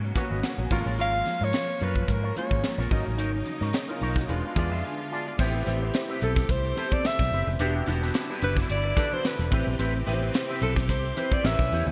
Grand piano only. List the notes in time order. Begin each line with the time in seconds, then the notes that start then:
Already playing: A#3 B3 C#4 F#4
0.15 A#3 B3 C#4 F#4
0.44 F#5
0.58 G#5
0.71 G#3 A3 C#4 F4
0.77 A#3
2.36 G#3 A#3 C#4 F4
2.91 F#3 A#3 C#4 D#4
3.75 G#4 C#5
3.89 F4 A#4
4.16 C#4 F#4
4.28 G#3 B3 D4 F4
4.56 G#3 B3 D4 F4 E5
4.84 G#5
5.12 A5
5.39 B3 C4 E4 G4
5.66 B3 C4 E4 G4
6.76 B3 C4 E4 A4
7.60 B3 D4 F#4 G4
7.86 B3 D4 F#4 G4
8.96 B3 D4 F#4 A4
9.51 C4 E4 G4 B4
10.06 B3 E4 G4 B4
10.13 C4
11.16 C4 E4 G4 B4
11.43 C#4 E4 G4 A#4
11.51 B4